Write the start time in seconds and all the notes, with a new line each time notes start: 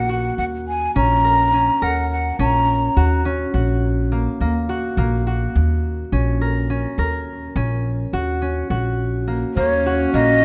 Already playing: A#1 A#3 C#4 F#5
0.09 F#4
0.38 D#2 F#5
0.68 G#5
0.96 A#1 C#4 A#5
1.25 A#4
1.53 C#4
1.82 D#2 A#4 F#5
2.11 F#5
2.39 A#1 C#4 A#5
2.96 D#2 F#4
3.25 C#4
3.54 A#1 F#4
4.12 A#3
4.40 D#2 A#3
4.69 F#4
4.97 A#1 A#3
5.27 F#4
5.55 D#2
6.12 A#1 C#4
6.41 A#4
6.70 C#4
6.98 D#2 A#4
7.56 A#1 C#4
8.13 D#2 F#4
8.42 C#4
8.70 A#1 F#4
9.28 A#3
9.56 D#2 A#3 C#4 C#5
9.86 F#4
10.13 A#1 A#3 D#5